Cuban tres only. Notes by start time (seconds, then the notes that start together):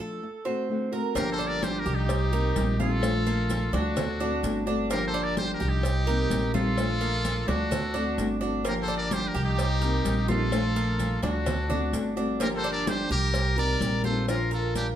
0.00 A4
0.45 C4
0.93 A#4
1.15 A#3
1.38 D4
1.86 G4
2.33 A#4
2.80 F4
3.27 A#3
3.73 D4
3.97 A4
4.20 D4
4.67 D4
4.90 A#3
5.14 D4
5.60 G4
6.07 A#4
6.54 F4
7.01 A#3
7.48 D4
7.71 A4
7.94 D4
8.41 D4
8.65 A#3
8.88 D4
9.34 G4
9.82 A#4
10.28 F4
10.76 A#3
11.23 D4
11.46 A4
11.70 D4
12.17 D4
12.40 A#3
12.64 D4
13.10 G4
13.58 A#4
14.04 F4
14.51 A#4